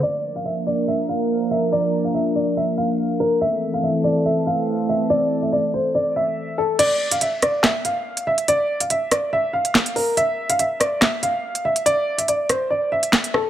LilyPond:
<<
  \new Staff \with { instrumentName = "Grand piano" } { \time 4/4 \key a \phrygian \tempo 4 = 142 d''8. f''16 e''8 d''8 e''8 f''4 e''8 | d''8. f''16 e''8 d''8 e''8 f''4 bes'8 | e''8. f''16 e''8 d''8 e''8 f''4 e''8 | d''8. e''16 d''8 c''8 d''8 e''4 a'8 |
d''8. f''16 e''8 d''8 e''8 f''4 e''8 | d''8. f''16 e''8 d''8 e''8 f''4 bes'8 | e''8. f''16 e''8 d''8 e''8 f''4 e''8 | d''8. e''16 d''8 c''8 d''8 e''4 a'8 | }
  \new Staff \with { instrumentName = "Analog synth pad" } { \time 4/4 \key a \phrygian <f bes d' bes'>1~ | <f bes d' bes'>1 | <e a c' a'>1~ | <e a c' a'>1 |
r1 | r1 | r1 | r1 | }
  \new DrumStaff \with { instrumentName = "Drums" } \drummode { \time 4/4 r4 r4 r4 r4 | r4 r4 r4 r4 | r4 r4 r4 r4 | r4 r4 r4 r4 |
<cymc hh>8. hh16 hh8 <hh ss>8 <hc sn>8 hh8 r16 hh8 hh16 | hh8. hh16 hh8 <hh ss>8 r8. hh16 <hc sn>16 hh16 hho8 | hh8. hh16 hh8 <hh ss>8 <hc sn>8 hh8 r16 hh8 hh16 | hh8. hh16 hh8 <hh ss>8 r8. hh16 <hc sn>16 hh16 ss8 | }
>>